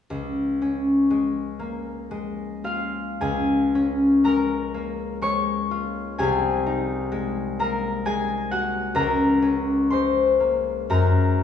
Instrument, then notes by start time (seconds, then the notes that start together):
harp
0.10 C#2
0.62 C#4
1.10 G#3
1.59 A#3
2.11 G#3
2.65 F4 F5
3.21 C#2 G#4 G#5
3.75 C#4
4.24 G#3 A#4 A#5
4.74 A#3
5.21 G#3 C#5 C#6
5.71 F4
6.18 C2 G#4 G#5
6.66 D#4
7.12 G#3
7.59 A#3 A#4 A#5
8.05 G#3 G#4 G#5
8.51 F#4 F#5
8.95 C#2 A#4 A#5
9.42 C#4
9.90 G#3 C5 C6
10.40 A#3
10.90 F#2 A#4 A#5